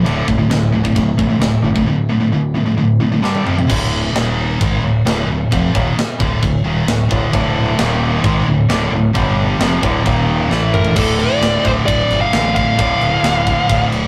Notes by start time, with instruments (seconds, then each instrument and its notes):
0.04 fingered electric bass D1, distorted electric guitar D2 A2 D3, ride bell
0.28 fingered electric bass D1, distorted electric guitar D2 A2, kick
0.39 distorted electric guitar D2 A2
0.49 fingered electric bass D1, distorted electric guitar D2 A2, snare, ride bell
0.73 distorted electric guitar D2 A2
0.84 distorted electric guitar D2 A2, kick
0.95 fingered electric bass D1, distorted electric guitar D2 A2, kick, ride bell
1.18 fingered electric bass A1, distorted electric guitar D2 A2, kick
1.30 distorted electric guitar D2 A2
1.41 fingered electric bass D1, distorted electric guitar D2 A2, snare, ride bell
1.63 fingered electric bass F#1, distorted electric guitar D2 A2
1.75 distorted electric guitar D2 A2, kick
1.86 distorted electric guitar D2 A2
2.09 distorted electric guitar D2 A2
2.20 distorted electric guitar D2 A2
2.33 distorted electric guitar D2 A2
2.55 distorted electric guitar D2 A2
2.66 distorted electric guitar D2 A2
2.78 distorted electric guitar D2 A2
3.00 distorted electric guitar D2 A2
3.12 distorted electric guitar D2 A2
3.22 distorted electric guitar G2 D3 G3, snare
3.35 high tom
3.45 distorted electric guitar F2 C3 F3, mid tom
3.56 distorted electric guitar F2 C3, floor tom
3.67 fingered electric bass D1, distorted electric guitar D2 A2 D3, kick, crash
4.13 fingered electric bass D#1, distorted electric guitar D#2 A#2 D#3, snare, crash
4.59 fingered electric bass G#1, distorted electric guitar G#2 D#3 G#3, kick, crash
4.82 fingered electric bass D1, distorted electric guitar D2 A2
5.05 fingered electric bass D1, distorted electric guitar D2 A2 D3, snare, crash
5.28 fingered electric bass D1, distorted electric guitar D2 A2
5.51 fingered electric bass F1, distorted electric guitar F2 C3 F3, kick, crash
5.73 fingered electric bass D#1, distorted electric guitar D#2 A#2 D#3, kick
5.97 muted fingered electric bass stroke, muted distorted electric guitar stroke, snare, crash
6.19 fingered electric bass D1, distorted electric guitar D2 A2 D3, kick
6.42 fingered electric bass D1, distorted electric guitar D2 A2, kick, crash
6.64 fingered electric bass D#1, distorted electric guitar D#2 A#2 D#3
6.87 fingered electric bass D1, distorted electric guitar D2 A2, snare, crash
7.09 fingered electric bass D1, distorted electric guitar D2 A2 D3, kick
7.32 fingered electric bass D1, distorted electric guitar D2 A2 D3, kick, crash
7.78 fingered electric bass D#1, distorted electric guitar D#2 A#2 D#3, snare, crash
8.23 fingered electric bass G#1, distorted electric guitar G#2 D#3 G#3, kick, crash
8.46 fingered electric bass D1, distorted electric guitar D2 A2
8.69 fingered electric bass D1, distorted electric guitar D2 A2 D3, snare, crash
8.91 fingered electric bass D1, distorted electric guitar D2 A2
9.13 fingered electric bass G1, distorted electric guitar G2 D3 G3, kick, crash
9.59 fingered electric bass F1, distorted electric guitar F2 C3 F3, snare, crash
9.81 fingered electric bass D1, distorted electric guitar D2 A2 D3, kick
10.04 fingered electric bass D#1, distorted electric guitar D#2 A#2 D#3, kick, crash
10.49 fingered electric bass A1, distorted electric guitar A2 E3 A3, snare
10.74 lead electric guitar A#4, mid tom
10.85 floor tom
10.95 fingered electric bass D1, distorted electric guitar D2 A2 D3, lead electric guitar A4, kick, crash
11.19 lead electric guitar D5, crash
11.41 fingered electric bass D1, snare, crash
11.64 fingered electric bass D1, lead electric guitar C5, kick, crash
11.86 fingered electric bass D1, lead electric guitar D5, kick, crash
12.10 fingered electric bass G1, crash
12.21 lead electric guitar F5
12.33 fingered electric bass A1, snare, crash
12.55 lead electric guitar F5, kick, crash
12.77 fingered electric bass D1, distorted electric guitar D2 A2 D3, kick, crash
13.01 fingered electric bass D1, crash
13.23 fingered electric bass D1, snare, crash
13.47 kick, crash
13.69 fingered electric bass D1, kick, crash
13.92 fingered electric bass D1, crash